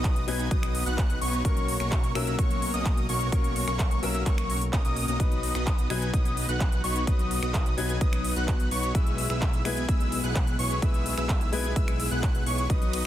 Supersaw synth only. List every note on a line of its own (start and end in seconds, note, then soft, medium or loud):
0.00 0.25 B3 medium
0.00 0.25 D#4 medium
0.00 0.25 F#4 medium
0.00 0.25 B4 medium
0.00 0.25 D#5 loud
0.28 0.48 B3 medium
0.28 0.48 D#4 medium
0.28 0.48 F#4 medium
0.28 0.48 B4 medium
0.28 0.48 G#5 loud
0.51 0.84 B3 medium
0.51 0.84 D#4 medium
0.51 0.84 F#4 medium
0.51 0.84 B4 medium
0.51 0.84 D#5 loud
0.86 1.19 B3 medium
0.86 1.19 D#4 medium
0.86 1.19 F#4 medium
0.86 1.19 B4 medium
0.86 1.19 F#5 loud
1.22 1.42 B3 loud
1.22 1.42 D#4 medium
1.22 1.42 F#4 medium
1.22 1.42 B4 medium
1.22 1.42 C#5 loud
1.45 1.77 A#3 medium
1.45 1.77 C#4 medium
1.45 1.77 F#4 medium
1.45 1.77 A#4 medium
1.45 1.77 C#5 medium
1.80 2.12 A#3 medium
1.80 2.12 C#4 medium
1.80 2.12 F#4 medium
1.80 2.12 A#4 medium
1.80 2.12 C#5 loud
2.15 2.35 A#3 medium
2.15 2.35 C#4 medium
2.15 2.35 F#4 medium
2.15 2.35 A#4 medium
2.15 2.35 E5 loud
2.39 2.71 A#3 medium
2.39 2.71 C#4 medium
2.39 2.71 F#4 medium
2.39 2.71 A#4 medium
2.39 2.71 C#5 loud
2.74 3.06 A#3 medium
2.74 3.06 C#4 medium
2.74 3.06 F#4 medium
2.74 3.06 A#4 medium
2.74 3.06 D#5 loud
3.09 3.30 A#3 loud
3.09 3.30 C#4 medium
3.09 3.30 F#4 medium
3.09 3.30 A#4 medium
3.09 3.30 C#5 loud
3.32 3.65 A#3 medium
3.32 3.65 C#4 medium
3.32 3.65 F#4 medium
3.32 3.65 A#4 medium
3.32 3.65 C#5 medium
3.68 4.00 A#3 medium
3.68 4.00 C#4 medium
3.68 4.00 F#4 medium
3.68 4.00 A#4 medium
3.68 4.00 C#5 loud
4.03 4.23 A#3 medium
4.03 4.23 C#4 medium
4.03 4.23 F#4 medium
4.03 4.23 A#4 medium
4.03 4.23 E5 loud
4.26 4.58 A#3 medium
4.26 4.58 C#4 medium
4.26 4.58 F#4 medium
4.26 4.58 A#4 medium
4.26 4.58 C#5 loud
4.73 4.82 A#3 loud
4.73 4.82 C#4 medium
4.73 4.82 F#4 medium
4.73 4.82 A#4 medium
4.73 4.82 D#5 loud
4.85 5.05 A#3 loud
4.85 5.05 C#4 medium
4.85 5.05 F#4 medium
4.85 5.05 A#4 medium
4.85 5.05 D#5 loud
5.08 5.18 A#3 loud
5.08 5.18 C#4 medium
5.08 5.18 F#4 medium
5.08 5.18 A#4 medium
5.08 5.18 D#5 loud
5.20 5.52 B3 medium
5.20 5.52 D#4 medium
5.20 5.52 F#4 medium
5.20 5.52 B4 medium
5.20 5.52 D#5 medium
5.55 5.88 B3 medium
5.55 5.87 D#4 medium
5.55 5.87 F#4 medium
5.55 5.88 B4 medium
5.55 5.88 D#5 loud
5.90 6.10 B3 medium
5.90 6.10 D#4 medium
5.90 6.10 F#4 medium
5.90 6.10 B4 medium
5.90 6.10 G#5 loud
6.14 6.46 B3 medium
6.14 6.46 D#4 medium
6.14 6.46 F#4 medium
6.14 6.46 B4 medium
6.14 6.46 D#5 loud
6.49 6.81 B3 medium
6.49 6.81 D#4 medium
6.49 6.81 F#4 medium
6.49 6.81 B4 medium
6.49 6.81 F#5 loud
6.84 7.05 B3 medium
6.84 7.05 D#4 medium
6.84 7.05 F#4 medium
6.84 7.05 B4 medium
6.84 7.05 C#5 loud
7.07 7.40 B3 medium
7.07 7.40 D#4 medium
7.07 7.40 F#4 medium
7.07 7.40 B4 medium
7.07 7.40 D#5 loud
7.43 7.75 B3 medium
7.43 7.75 D#4 medium
7.43 7.75 F#4 medium
7.43 7.75 B4 medium
7.43 7.75 D#5 loud
7.78 7.98 B3 medium
7.78 7.98 D#4 medium
7.78 7.98 F#4 medium
7.78 7.98 B4 medium
7.78 7.98 G#5 loud
8.01 8.34 B3 medium
8.01 8.34 D#4 medium
8.01 8.34 F#4 medium
8.01 8.34 B4 medium
8.01 8.34 D#5 loud
8.36 8.69 B3 medium
8.36 8.69 D#4 medium
8.36 8.69 F#4 medium
8.36 8.69 B4 medium
8.36 8.69 F#5 loud
8.71 8.92 B3 loud
8.71 8.92 D#4 medium
8.71 8.92 F#4 medium
8.71 8.92 B4 medium
8.71 8.92 C#5 loud
8.95 9.27 B3 medium
8.95 9.27 E4 medium
8.95 9.27 G#4 medium
8.95 9.27 B4 medium
8.95 9.27 E5 loud
9.30 9.62 B3 medium
9.30 9.62 E4 medium
9.30 9.62 G#4 medium
9.30 9.62 B4 medium
9.30 9.62 E5 loud
9.65 9.85 B3 medium
9.65 9.85 E4 medium
9.65 9.85 G#4 medium
9.65 9.85 B4 medium
9.65 9.85 G#5 loud
9.89 10.21 B3 medium
9.89 10.21 E4 medium
9.89 10.21 G#4 medium
9.89 10.21 B4 medium
9.89 10.21 E5 loud
10.24 10.56 B3 medium
10.24 10.56 E4 medium
10.24 10.56 G#4 medium
10.24 10.56 B4 medium
10.24 10.56 F#5 loud
10.59 10.80 B3 loud
10.59 10.80 E4 medium
10.59 10.80 G#4 medium
10.59 10.80 B4 medium
10.59 10.80 C#5 loud
10.82 11.15 B3 medium
10.82 11.15 E4 medium
10.82 11.15 G#4 medium
10.82 11.15 B4 medium
10.82 11.15 E5 medium
11.18 11.50 B3 medium
11.18 11.50 E4 medium
11.18 11.50 G#4 medium
11.18 11.50 B4 medium
11.18 11.50 E5 loud
11.53 11.73 B3 medium
11.53 11.73 E4 medium
11.53 11.73 G#4 medium
11.53 11.73 B4 medium
11.53 11.73 G#5 loud
11.76 12.08 B3 medium
11.76 12.08 E4 medium
11.76 12.08 G#4 medium
11.76 12.08 B4 medium
11.76 12.08 E5 loud
12.11 12.44 B3 medium
12.11 12.44 E4 medium
12.11 12.44 G#4 medium
12.11 12.44 B4 medium
12.11 12.44 F#5 loud
12.46 12.67 B3 loud
12.46 12.67 E4 medium
12.46 12.67 G#4 medium
12.46 12.67 B4 medium
12.46 12.67 C#5 loud
12.70 13.02 B3 medium
12.70 13.02 D#4 medium
12.70 13.02 F#4 medium
12.70 13.02 B4 medium
12.70 13.02 D#5 medium